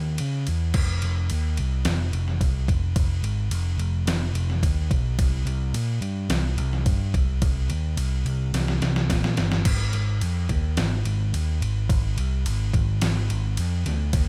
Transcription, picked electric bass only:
0.00 0.18 D#2 medium
0.21 0.46 C#3 medium
0.48 0.74 E2 medium
0.75 1.01 F1 medium
1.03 1.29 F1 medium
1.31 1.57 D#2 medium
1.59 1.85 C2 medium
1.85 2.12 F1 medium
2.13 2.40 F1 medium
2.41 2.67 C2 medium
2.68 2.95 F1 medium
2.96 3.22 F1 medium
3.23 3.50 G#1 medium
3.51 3.77 F1 medium
3.78 4.05 F1 medium
4.06 4.33 F1 medium
4.34 4.61 F1 loud
4.63 4.90 D#2 medium
4.91 5.18 B1 medium
5.19 5.45 C2 medium
5.45 5.73 C2 medium
5.74 6.01 A#2 loud
6.01 6.29 G2 medium
6.29 6.57 C2 medium
6.58 6.85 C2 loud
6.86 7.13 G2 medium
7.14 7.41 C2 medium
7.42 7.69 C2 medium
7.69 7.96 D#2 medium
7.97 8.24 C2 medium
8.26 8.53 C2 medium
8.54 8.81 C2 loud
8.82 9.09 C2 medium
9.10 9.37 A#2 medium
9.38 9.65 G1 medium
9.66 9.92 G#1 medium
9.94 10.20 G#1 medium
10.22 10.48 F2 medium
10.49 10.76 D#2 medium
10.78 11.05 G#1 loud
11.06 11.32 G#1 medium
11.33 11.60 D#2 medium
11.61 11.88 G#1 loud
11.90 12.16 G#1 medium
12.17 12.44 C2 loud
12.46 12.73 G#1 medium
12.74 13.00 G#1 loud
13.02 13.28 G#1 medium
13.30 13.57 G#1 loud
13.59 13.85 F2 loud
13.86 14.13 D2 medium
14.13 14.28 D#2 medium

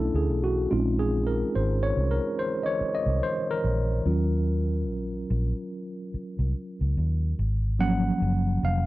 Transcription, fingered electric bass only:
0.14 0.31 D2 medium
0.31 0.66 B1 medium
0.72 1.42 A#1 medium
1.56 1.91 G#1 medium
1.97 2.18 C2 medium
2.81 muted fingered electric bass stroke soft
3.06 3.19 C2 medium
3.64 3.99 A#1 medium
4.06 4.89 D#2 loud
4.89 5.23 A#1 medium
5.30 5.51 A#1 loud
6.14 muted fingered electric bass stroke soft
6.39 6.52 C2 medium
6.81 6.94 C#2 medium
6.97 7.32 D#2 medium
7.39 8.09 G#1 medium
8.22 8.57 F#1 loud
8.63 8.84 F1 loud

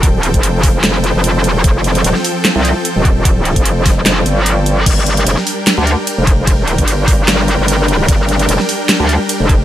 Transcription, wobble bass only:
0.00 0.16 D#1 loud
0.16 0.32 D1 loud
0.34 0.73 F1 medium
0.74 1.13 F1 loud
1.15 1.63 F1 loud
1.64 2.03 F1 loud
2.04 2.14 D#1 loud
2.56 2.74 C2 loud
2.96 3.55 D#1 loud
3.56 3.95 F1 loud
3.97 4.04 F1 loud
4.06 4.24 F1 loud
4.26 4.85 G1 loud
4.86 5.25 G1 loud
5.27 5.36 F1 loud
5.78 5.96 D2 loud
6.18 6.77 F1 loud
6.78 7.17 G1 loud
7.19 7.57 G1 loud
7.59 8.07 G1 medium
8.08 8.47 G1 loud
8.49 8.58 F1 loud
9.00 9.18 D2 loud
9.40 9.64 F1 loud

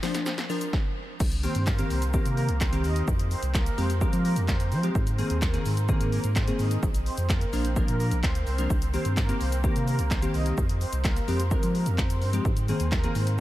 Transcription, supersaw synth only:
1.44 1.53 C4 medium
1.44 1.53 C5 medium
1.67 1.86 A#3 medium
1.67 1.85 A#4 medium
1.91 2.00 C4 medium
1.91 2.00 C5 medium
2.14 2.33 A#3 medium
2.14 2.32 A#4 medium
2.37 2.47 A#3 medium
2.37 2.46 A#4 medium
2.61 2.71 C4 medium
2.61 2.70 C5 medium
2.84 2.94 D#4 medium
2.84 2.94 D#5 medium
3.31 3.41 C4 medium
3.31 3.40 C5 medium
3.54 3.73 A#3 medium
3.54 3.73 A#4 medium
3.78 3.88 C4 medium
3.78 3.87 C5 medium
4.02 4.20 A#3 medium
4.02 4.20 A#4 medium
4.25 4.35 A#3 medium
4.25 4.34 A#4 medium
4.48 4.58 C4 medium
4.48 4.57 C5 medium
4.72 4.82 C4 medium
4.72 4.81 C5 medium
5.19 5.28 C4 medium
5.19 5.28 C5 medium
5.42 5.61 A#3 medium
5.42 5.61 A#4 medium
5.66 5.75 C4 medium
5.66 5.75 C5 medium
5.89 6.08 A#3 medium
5.89 6.07 A#4 medium
6.12 6.22 A#3 medium
6.12 6.21 A#4 medium
6.36 6.45 C4 medium
6.36 6.45 C5 medium
6.59 6.69 D#4 medium
6.59 6.68 D#5 medium
7.06 7.16 C4 medium
7.06 7.15 C5 medium
7.30 7.48 A#3 medium
7.30 7.48 A#4 medium
7.53 7.63 C4 medium
7.53 7.62 C5 medium
7.76 7.95 A#3 medium
7.76 7.95 A#4 medium
8.00 8.09 A#3 medium
8.00 8.09 A#4 medium
8.23 8.33 C4 medium
8.23 8.32 C5 medium
8.47 8.56 C4 medium
8.47 8.56 C5 medium
8.93 9.03 C4 medium
8.93 9.03 C5 medium
9.17 9.36 A#3 medium
9.17 9.35 A#4 medium
9.40 9.50 C4 medium
9.40 9.50 C5 medium
9.64 9.83 A#3 medium
9.64 9.82 A#4 medium
9.87 9.97 A#3 medium
9.87 9.96 A#4 medium
10.11 10.20 C4 medium
10.11 10.20 C5 medium
10.34 10.44 D#4 medium
10.34 10.43 D#5 medium
10.81 10.91 C4 medium
10.81 10.90 C5 medium
11.04 11.23 A#3 medium
11.04 11.23 A#4 medium
11.28 11.38 C4 medium
11.28 11.37 C5 medium
11.51 11.70 A#3 medium
11.51 11.70 A#4 medium
11.75 11.85 A#3 medium
11.75 11.84 A#4 medium
11.98 12.08 C4 medium
11.98 12.07 C5 medium
12.22 12.31 C4 medium
12.22 12.31 C5 medium
12.68 12.78 C4 medium
12.68 12.78 C5 medium
12.92 13.11 A#3 medium
12.92 13.10 A#4 medium
13.15 13.25 C4 medium
13.15 13.25 C5 medium

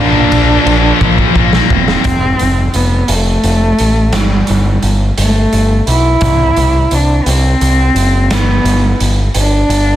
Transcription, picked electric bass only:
0.00 0.22 A#1 loud
0.32 0.56 A#1 medium
0.66 0.91 A#1 medium
1.01 1.26 A#1 loud
1.35 1.60 A#1 medium
1.71 1.96 E1 medium
2.06 2.33 F1 medium
2.41 2.68 F1 medium
2.74 3.02 F1 medium
3.09 3.37 F1 medium
3.44 3.71 F1 medium
3.80 4.14 A1 medium
4.14 4.41 G1 medium
4.50 4.77 G1 medium
4.83 5.11 G1 medium
5.18 5.45 G1 medium
5.53 5.81 G1 medium
5.87 6.15 B1 medium
6.22 6.50 C2 medium
6.57 6.85 C2 medium
6.92 7.19 C2 medium
7.26 7.54 C2 medium
7.61 7.89 C2 medium
7.95 8.30 F#1 medium
8.30 8.58 G1 medium
8.64 8.93 G1 medium
9.01 9.28 G1 medium
9.35 9.63 G1 medium
9.69 9.96 G1 medium

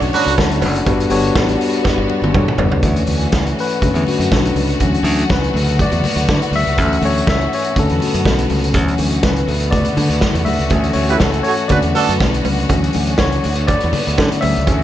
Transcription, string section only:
0.00 2.79 D3 medium
0.00 0.85 A3 medium
0.00 0.83 F#4 medium
0.00 0.85 C#5 medium
0.85 2.81 G3 medium
0.85 2.80 B3 medium
0.85 2.81 F#4 medium
2.83 3.80 E3 medium
2.83 9.44 A3 medium
2.83 3.81 C#4 medium
2.83 8.70 F#4 medium
3.81 4.79 D3 medium
3.81 4.79 B3 medium
4.80 6.75 F#3 medium
4.80 5.53 C#4 medium
5.55 6.76 B3 medium
6.76 7.74 E3 medium
6.76 7.74 C#4 medium
7.75 10.69 B2 medium
7.75 8.73 B3 medium
8.74 9.48 C#4 medium
8.74 14.63 F#4 medium
9.48 12.66 A3 medium
9.48 10.71 B3 medium
10.71 11.69 E3 medium
10.71 11.69 C#4 medium
11.71 14.64 D3 medium
11.71 12.69 B3 medium
12.70 14.66 A3 medium
12.70 13.43 C#4 medium
13.44 14.66 B3 medium
14.68 14.83 E3 medium
14.68 14.83 A3 medium
14.68 14.83 C#4 medium
14.68 14.83 F#4 medium

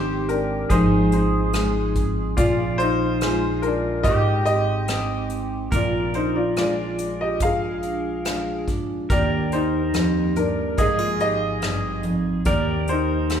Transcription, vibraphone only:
0.00 0.79 C4 soft
0.00 0.70 D#4 medium
0.00 0.79 G4 medium
0.30 0.79 G#3 soft
0.71 2.38 D#4 medium
1.12 1.95 C4 medium
1.54 2.46 G#3 medium
1.96 2.46 C4 medium
2.37 4.04 F3 medium
2.37 3.20 F4 medium
3.22 4.13 F4 medium
3.63 4.13 G#3 soft
4.05 5.73 D#4 medium
4.46 5.28 C4 medium
4.88 5.81 G#3 medium
5.29 5.80 C4 medium
5.72 9.10 F3 medium
5.72 6.56 F4 medium
6.14 7.82 D4 soft
6.57 7.40 F4 medium
6.99 8.25 G#3 soft
7.41 9.10 F4 medium
7.83 8.68 D4 medium
8.26 9.10 G#3 medium
8.69 9.19 D4 medium
9.11 10.36 A#3 medium
9.11 9.94 G4 medium
9.95 10.87 G4 medium
10.37 10.87 A#3 soft
10.79 12.55 F3 medium
11.21 12.03 D#4 medium
11.62 12.46 C4 medium
12.04 12.54 D#4 medium
12.46 13.40 A#3 medium
12.46 13.29 G4 medium
13.30 13.40 G4 medium

